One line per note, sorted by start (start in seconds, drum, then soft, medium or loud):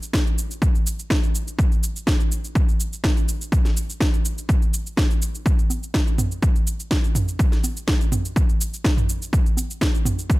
0.03 shaker soft
0.13 kick loud
0.13 snare loud
0.13 shaker soft
0.27 shaker soft
0.38 shaker medium
0.51 shaker soft
0.62 kick loud
0.62 shaker soft
0.75 shaker soft
0.87 shaker medium
0.99 shaker soft
1.10 kick loud
1.10 snare loud
1.10 shaker soft
1.24 shaker soft
1.35 shaker medium
1.48 shaker soft
1.59 kick loud
1.59 shaker soft
1.72 shaker soft
1.83 shaker medium
1.96 shaker soft
2.07 kick loud
2.07 snare loud
2.07 shaker soft
2.20 shaker soft
2.32 shaker medium
2.44 shaker soft
2.55 kick loud
2.55 shaker soft
2.69 shaker soft
2.80 shaker medium
2.93 shaker soft
3.04 kick loud
3.04 snare loud
3.04 shaker soft
3.17 shaker soft
3.29 shaker medium
3.41 shaker soft
3.52 kick loud
3.52 shaker soft
3.65 snare soft
3.65 shaker soft
3.77 shaker medium
3.90 shaker soft
4.01 kick loud
4.01 snare loud
4.01 shaker soft
4.14 shaker soft
4.25 shaker medium
4.38 shaker soft
4.49 kick loud
4.49 shaker soft
4.62 shaker soft
4.74 shaker medium
4.86 shaker soft
4.97 kick loud
4.97 snare loud
4.97 shaker soft
5.11 shaker soft
5.22 shaker medium
5.35 shaker soft
5.46 kick loud
5.46 shaker soft
5.59 shaker soft
5.70 high conga medium
5.70 shaker medium
5.83 shaker soft
5.94 kick loud
5.94 snare loud
5.94 shaker soft
6.07 shaker soft
6.18 mid tom medium
6.18 high conga medium
6.18 shaker medium
6.32 shaker soft
6.42 kick loud
6.42 shaker soft
6.56 shaker soft
6.67 shaker medium
6.80 shaker soft
6.91 kick loud
6.91 snare loud
6.91 shaker soft
7.04 shaker soft
7.15 mid tom medium
7.15 shaker medium
7.28 shaker soft
7.39 kick loud
7.39 shaker soft
7.52 snare soft
7.52 shaker soft
7.64 high conga medium
7.64 shaker medium
7.77 shaker soft
7.88 kick loud
7.88 snare loud
7.88 shaker soft
8.01 shaker soft
8.12 mid tom medium
8.12 high conga medium
8.12 shaker medium
8.25 shaker soft
8.36 kick loud
8.36 shaker soft
8.49 shaker soft
8.61 shaker medium
8.74 shaker soft
8.85 kick medium
8.85 snare loud
8.85 shaker soft
8.97 mid tom medium
8.97 shaker soft
9.09 shaker medium
9.22 shaker soft
9.33 kick loud
9.33 shaker soft
9.46 shaker soft
9.57 high conga medium
9.57 shaker medium
9.71 shaker soft
9.81 kick loud
9.81 snare loud
9.81 shaker soft
9.95 shaker soft
10.05 mid tom medium
10.05 high conga medium
10.05 shaker medium
10.19 shaker soft
10.30 kick loud
10.30 shaker soft